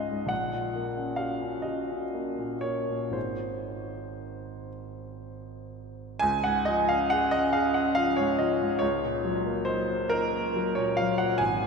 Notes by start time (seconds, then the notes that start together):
Already playing: C#2 G#2 G#3 C#4 F4 D#5 F5 F#5
0.11 G#2
0.26 A#1 F#5
0.53 A#2
0.76 A#3
0.96 C#4
1.16 F#4 F5
1.41 C#4
1.62 F#4 D#5
1.89 C#4
2.14 A#3
2.38 A#2
2.61 A#3 C#5
2.90 A#2
3.11 G#1 D#3 D#4 G#4 C5
6.19 C#2 G#5
6.44 G#2 F#5
6.65 F3 D#5
6.89 C#4 F5
7.10 G#4 F#5
7.31 C#4 D#5
7.53 G#4 F5
7.74 C#4 F#5
7.95 F3 F5
8.16 G#2 C#5
8.39 F3 D#5
8.62 G#2
8.79 C#2 C#5
9.03 A#2
9.25 F#3
9.46 A#3
9.65 D#4 C5
9.90 A#3
10.10 D#4 A#4
10.34 A#3
10.56 F#3
10.75 A#2 C#5
10.97 F#3 F5
11.18 A#2 F#5
11.38 G#1 G#5
11.61 D#2